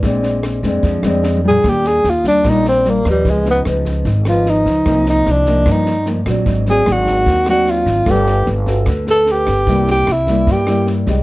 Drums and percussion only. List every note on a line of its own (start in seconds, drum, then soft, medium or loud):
0.03 kick medium
0.03 snare soft
0.23 snare soft
0.43 cross-stick medium
0.43 snare soft
0.63 kick soft
0.63 snare soft
0.83 kick medium
0.83 snare soft
1.03 cross-stick medium
1.03 snare soft
1.23 snare soft
1.37 mid tom soft
1.50 floor tom medium
1.64 kick medium
1.64 cross-stick medium
1.64 snare soft
1.84 snare soft
2.04 snare soft
2.24 kick soft
2.24 snare soft
2.44 kick medium
2.44 cross-stick medium
2.44 snare soft
2.65 snare soft
2.85 snare soft
3.05 kick soft
3.05 cross-stick medium
3.05 snare soft
3.25 kick medium
3.25 snare soft
3.45 snare soft
3.65 cross-stick medium
3.65 snare soft
3.85 kick soft
3.85 snare soft
4.05 kick medium
4.05 snare soft
4.25 cross-stick medium
4.25 snare soft
4.46 snare soft
4.66 kick soft
4.66 snare soft
4.86 kick medium
4.86 cross-stick medium
4.86 snare soft
5.06 snare soft
5.26 snare soft
5.46 kick soft
5.46 snare soft
5.66 kick medium
5.66 cross-stick medium
5.66 snare soft
5.86 snare soft
6.06 snare soft
6.26 kick soft
6.26 cross-stick medium
6.26 snare soft
6.46 kick medium
6.46 snare soft
6.66 snare soft
6.86 cross-stick medium
6.86 snare soft
7.06 kick soft
7.06 snare soft
7.26 kick medium
7.26 snare soft
7.46 cross-stick medium
7.46 snare soft
7.67 snare soft
7.86 kick soft
7.86 snare soft
8.06 kick medium
8.06 cross-stick medium
8.06 snare soft
8.26 snare soft
8.46 snare soft
8.67 kick soft
8.67 snare soft
8.86 kick medium
8.86 cross-stick medium
8.86 snare soft
9.07 snare soft
9.26 snare soft
9.47 kick soft
9.47 cross-stick medium
9.47 snare soft
9.67 kick medium
9.67 snare soft
9.87 snare soft
10.07 cross-stick medium
10.07 snare soft
10.27 kick soft
10.27 snare soft
10.47 kick medium
10.47 snare soft
10.67 cross-stick medium
10.67 snare soft
10.87 snare soft
11.07 kick soft
11.07 snare soft